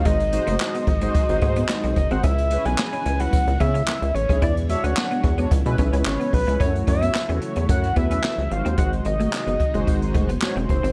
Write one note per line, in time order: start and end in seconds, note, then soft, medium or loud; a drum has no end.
0.00 2.21 D#3 medium
0.00 2.20 F#3 medium
0.00 0.22 G#3 medium
0.00 6.56 G#3 medium
0.00 2.21 C4 medium
0.00 0.22 D#4 medium
0.00 0.22 F#4 medium
0.00 2.20 F#4 loud
0.00 0.23 C5 medium
0.05 0.39 G#1 loud
0.05 0.14 G#3 medium
0.05 1.95 D#5 loud
0.05 kick loud
0.05 closed hi-hat medium
0.20 closed hi-hat medium
0.32 0.87 G#3 medium
0.32 0.87 D#4 medium
0.32 0.87 F#4 medium
0.32 0.87 C5 loud
0.32 muted clean electric guitar stroke soft
0.32 closed hi-hat medium
0.47 0.58 F#1 medium
0.47 0.54 A3 medium
0.47 closed hi-hat medium
0.60 snare loud
0.60 clap medium
0.74 0.82 B3 medium
0.74 closed hi-hat medium
0.87 1.09 G#1 medium
0.87 muted clean electric guitar stroke medium
0.87 kick loud
0.87 closed hi-hat medium
1.01 1.23 G#3 loud
1.01 1.09 G#3 medium
1.01 1.23 D#4 medium
1.01 1.23 F#4 loud
1.01 1.23 C5 loud
1.01 closed hi-hat medium
1.14 muted clean electric guitar stroke soft
1.14 kick loud
1.14 closed hi-hat loud
1.29 1.40 G#1 loud
1.29 1.39 G#3 medium
1.29 1.39 D#4 medium
1.29 1.39 F#4 medium
1.29 1.39 C5 loud
1.29 closed hi-hat medium
1.41 1.64 G#2 loud
1.41 1.96 G#3 loud
1.41 1.50 A3 medium
1.41 1.96 D#4 medium
1.41 1.96 F#4 medium
1.41 1.96 C5 loud
1.41 kick loud
1.41 closed hi-hat medium
1.56 1.64 B3 medium
1.56 closed hi-hat medium
1.69 snare loud
1.69 clap loud
1.83 1.94 B1 medium
1.83 1.91 C4 medium
1.83 closed hi-hat medium
1.96 2.08 F#1 medium
1.96 2.13 D#5 loud
1.96 muted clean electric guitar stroke medium
1.96 kick medium
1.96 closed hi-hat medium
2.10 2.21 G#1 medium
2.10 2.23 G#3 medium
2.10 2.18 C4 medium
2.10 2.23 D#4 medium
2.10 2.24 F#4 medium
2.10 2.24 C5 medium
2.10 2.23 F#5 loud
2.10 closed hi-hat medium
2.23 2.58 C#2 loud
2.23 4.39 C#3 medium
2.23 4.39 E3 medium
2.23 4.39 B3 medium
2.23 2.32 C#4 medium
2.23 4.39 E4 medium
2.23 2.67 E5 loud
2.23 kick loud
2.23 closed hi-hat medium
2.38 closed hi-hat medium
2.50 3.38 G#3 medium
2.50 3.38 C#4 medium
2.50 3.38 E4 medium
2.50 3.38 B4 loud
2.50 muted clean electric guitar stroke soft
2.50 closed hi-hat medium
2.65 2.76 B1 medium
2.65 2.73 B3 medium
2.65 2.77 G#5 loud
2.65 closed hi-hat medium
2.78 3.22 G#5 loud
2.78 snare loud
2.78 clap medium
2.92 3.00 C#4 medium
2.92 closed hi-hat medium
3.05 3.28 C#2 medium
3.05 muted clean electric guitar stroke medium
3.05 closed hi-hat medium
3.19 3.28 G#3 medium
3.19 3.61 F#5 loud
3.19 closed hi-hat medium
3.33 muted clean electric guitar stroke soft
3.33 kick loud
3.33 closed hi-hat loud
3.47 3.58 C#2 loud
3.47 closed hi-hat soft
3.60 3.83 C#3 loud
3.60 3.69 B3 medium
3.60 4.16 E5 loud
3.60 kick medium
3.60 closed hi-hat medium
3.74 3.82 C#4 medium
3.74 closed hi-hat medium
3.88 3.96 G#3 medium
3.88 snare loud
3.88 clap loud
4.02 4.12 C#2 medium
4.02 closed hi-hat soft
4.14 4.26 A1 medium
4.14 4.42 C#5 medium
4.14 muted clean electric guitar stroke soft
4.14 closed hi-hat medium
4.28 4.40 B1 medium
4.28 4.41 G#3 medium
4.28 4.42 C#4 medium
4.28 4.37 C#4 medium
4.28 4.42 E4 medium
4.28 4.42 G#4 medium
4.28 kick medium
4.28 closed hi-hat medium
4.42 4.76 E2 loud
4.42 5.50 D3 medium
4.42 5.50 F#3 medium
4.42 4.50 E4 loud
4.42 6.58 E4 medium
4.42 5.50 C#5 medium
4.42 4.54 D5 loud
4.42 kick loud
4.42 closed hi-hat medium
4.57 closed hi-hat medium
4.69 5.23 G#3 medium
4.69 5.23 D4 medium
4.69 5.23 F#4 medium
4.69 5.24 C#5 loud
4.69 4.85 E5 loud
4.69 muted clean electric guitar stroke medium
4.69 closed hi-hat medium
4.83 4.94 D2 medium
4.83 4.91 C#4 medium
4.83 5.38 F#5 loud
4.83 closed hi-hat medium
4.97 snare loud
4.97 clap loud
5.11 5.18 B3 medium
5.11 closed hi-hat medium
5.24 5.46 E2 loud
5.24 muted clean electric guitar stroke soft
5.24 kick medium
5.24 closed hi-hat medium
5.38 5.51 G#3 medium
5.38 5.45 B3 medium
5.38 5.51 D4 medium
5.38 5.51 F#4 medium
5.38 5.51 C#5 medium
5.38 closed hi-hat medium
5.51 5.63 C#2 loud
5.51 6.58 C#3 medium
5.51 6.59 E3 medium
5.51 6.59 B3 medium
5.51 muted clean electric guitar stroke soft
5.51 kick loud
5.51 closed hi-hat loud
5.65 5.76 B2 medium
5.65 5.75 G#3 loud
5.65 5.76 C#4 medium
5.65 5.76 E4 medium
5.65 5.76 B4 loud
5.65 closed hi-hat medium
5.78 5.90 B1 loud
5.78 6.32 G#3 medium
5.78 6.32 C#4 medium
5.78 5.87 C#4 medium
5.78 6.33 E4 medium
5.78 6.33 B4 medium
5.78 kick medium
5.78 closed hi-hat medium
5.93 6.03 C#2 medium
5.93 6.00 C#4 medium
5.93 closed hi-hat medium
6.06 6.18 G#1 medium
6.06 6.32 C#5 medium
6.06 snare loud
6.06 clap loud
6.20 6.27 B3 medium
6.20 closed hi-hat medium
6.33 6.45 B1 loud
6.33 6.59 B4 loud
6.33 muted clean electric guitar stroke soft
6.33 kick medium
6.33 open hi-hat medium
6.47 6.58 C#2 medium
6.47 6.60 G#3 medium
6.47 6.55 G#3 medium
6.47 6.60 C#4 medium
6.47 6.59 E4 medium
6.47 6.60 B4 medium
6.47 closed hi-hat medium
6.60 6.82 F#2 loud
6.60 8.49 C#3 medium
6.60 8.49 E3 medium
6.60 8.49 F#3 medium
6.60 7.14 A3 medium
6.60 8.49 A3 medium
6.60 6.68 C#4 medium
6.60 8.49 E4 loud
6.60 7.14 E4 medium
6.60 7.14 F#4 medium
6.60 7.15 C#5 medium
6.60 6.73 C#5 loud
6.60 kick loud
6.60 closed hi-hat medium
6.75 closed hi-hat medium
6.87 7.10 F#2 loud
6.87 7.38 E5 loud
6.87 muted clean electric guitar stroke soft
6.87 kick medium
6.87 closed hi-hat medium
7.01 7.09 B3 medium
7.01 closed hi-hat medium
7.15 snare loud
7.15 clap medium
7.29 7.39 E2 medium
7.29 7.83 A3 medium
7.29 7.36 C#4 medium
7.29 7.83 E4 medium
7.29 7.83 F#4 medium
7.29 7.35 C5 medium
7.29 closed hi-hat soft
7.36 7.87 C#5 medium
7.41 muted clean electric guitar stroke medium
7.41 closed hi-hat medium
7.56 7.67 E2 medium
7.56 7.64 A3 medium
7.56 closed hi-hat medium
7.69 7.91 F#2 medium
7.69 7.95 F#5 loud
7.69 muted clean electric guitar stroke soft
7.69 kick loud
7.69 closed hi-hat medium
7.83 closed hi-hat soft
7.96 8.19 E2 medium
7.96 8.40 A3 medium
7.96 8.05 B3 medium
7.96 8.40 E4 medium
7.96 8.40 F#4 medium
7.96 8.40 B4 medium
7.96 8.53 E5 loud
7.96 kick loud
7.96 closed hi-hat medium
8.10 8.18 C#4 medium
8.10 closed hi-hat medium
8.24 8.32 A3 medium
8.24 snare loud
8.24 clap medium
8.38 8.48 C#2 medium
8.38 closed hi-hat soft
8.50 8.63 G#1 loud
8.50 10.92 C3 medium
8.50 10.92 D#3 medium
8.50 10.92 F#3 medium
8.50 9.05 G#3 medium
8.50 10.92 G#3 medium
8.50 9.06 D#4 medium
8.50 10.92 D#4 loud
8.50 9.06 F#4 medium
8.50 9.06 C5 medium
8.50 8.78 F5 loud
8.50 muted clean electric guitar stroke soft
8.50 closed hi-hat medium
8.65 8.76 D#2 medium
8.65 8.72 C4 medium
8.65 closed hi-hat medium
8.77 9.00 G#1 loud
8.77 8.86 G#3 medium
8.77 8.91 F#5 loud
8.77 kick loud
8.77 closed hi-hat medium
8.92 closed hi-hat soft
9.04 9.28 G#1 loud
9.04 10.11 D#5 medium
9.04 muted clean electric guitar stroke soft
9.04 closed hi-hat medium
9.19 9.62 G#3 medium
9.19 9.27 A3 medium
9.19 9.62 D#4 medium
9.19 9.63 F#4 medium
9.19 9.63 D#5 medium
9.19 closed hi-hat medium
9.33 snare loud
9.33 clap loud
9.47 9.57 F#1 medium
9.47 9.54 B3 medium
9.47 closed hi-hat medium
9.60 muted clean electric guitar stroke soft
9.60 kick medium
9.60 closed hi-hat medium
9.74 9.85 F#1 medium
9.74 10.28 G#3 loud
9.74 9.82 G#3 medium
9.74 10.28 D#4 loud
9.74 10.29 F#4 medium
9.74 10.29 C5 loud
9.74 closed hi-hat medium
9.87 10.16 G#1 medium
9.87 muted clean electric guitar stroke soft
9.87 kick loud
9.87 closed hi-hat medium
10.02 closed hi-hat soft
10.14 10.37 F#1 loud
10.14 10.23 A3 medium
10.14 kick medium
10.14 closed hi-hat medium
10.29 10.36 B3 medium
10.29 closed hi-hat medium
10.41 10.86 G#3 medium
10.41 10.86 D#4 medium
10.41 10.86 F#4 medium
10.41 10.86 C5 medium
10.41 10.55 C#5 medium
10.41 snare loud
10.41 clap medium
10.56 10.66 E1 loud
10.56 10.64 C4 medium
10.56 closed hi-hat soft
10.69 10.81 F#1 medium
10.69 10.92 C5 medium
10.69 muted clean electric guitar stroke soft
10.69 kick medium
10.69 closed hi-hat medium
10.83 10.92 G#1 medium
10.83 10.91 C4 medium
10.83 closed hi-hat medium